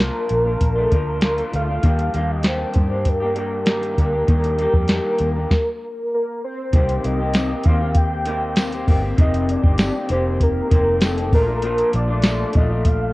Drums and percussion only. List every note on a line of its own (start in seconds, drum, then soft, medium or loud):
0.00 snare medium
0.29 closed hi-hat medium
0.61 kick medium
0.61 closed hi-hat medium
0.92 kick medium
0.92 closed hi-hat medium
1.21 snare loud
1.21 closed hi-hat medium
1.38 closed hi-hat soft
1.53 closed hi-hat medium
1.83 kick medium
1.83 closed hi-hat medium
1.99 closed hi-hat medium
2.14 closed hi-hat medium
2.43 snare medium
2.43 closed hi-hat medium
2.73 kick medium
2.73 closed hi-hat medium
3.05 kick medium
3.05 closed hi-hat medium
3.36 closed hi-hat medium
3.66 snare loud
3.66 closed hi-hat medium
3.83 closed hi-hat soft
3.98 kick medium
3.98 closed hi-hat medium
4.28 kick medium
4.28 closed hi-hat medium
4.44 closed hi-hat soft
4.59 closed hi-hat medium
4.74 kick medium
4.88 snare medium
4.88 closed hi-hat medium
5.18 closed hi-hat medium
5.51 kick medium
5.51 snare medium
6.73 kick loud
6.73 closed hi-hat medium
6.89 closed hi-hat medium
7.04 closed hi-hat medium
7.34 snare loud
7.34 closed hi-hat medium
7.34 tambourine medium
7.63 kick medium
7.63 closed hi-hat medium
7.95 kick medium
7.95 closed hi-hat medium
8.26 closed hi-hat medium
8.56 snare loud
8.56 closed hi-hat medium
8.56 tambourine medium
8.73 closed hi-hat medium
8.88 kick medium
8.88 open hi-hat soft
9.18 kick loud
9.18 closed hi-hat medium
9.34 closed hi-hat medium
9.49 closed hi-hat medium
9.64 kick medium
9.78 snare loud
9.78 closed hi-hat medium
9.78 tambourine medium
10.09 closed hi-hat medium
10.40 kick medium
10.40 closed hi-hat medium
10.71 kick medium
10.71 closed hi-hat medium
11.01 snare loud
11.01 closed hi-hat medium
11.01 tambourine medium
11.18 closed hi-hat medium
11.32 kick loud
11.32 open hi-hat soft
11.62 closed hi-hat medium
11.78 closed hi-hat medium
11.93 closed hi-hat medium
12.22 snare loud
12.22 closed hi-hat medium
12.22 tambourine medium
12.53 kick medium
12.53 closed hi-hat medium
12.85 kick medium
12.85 closed hi-hat medium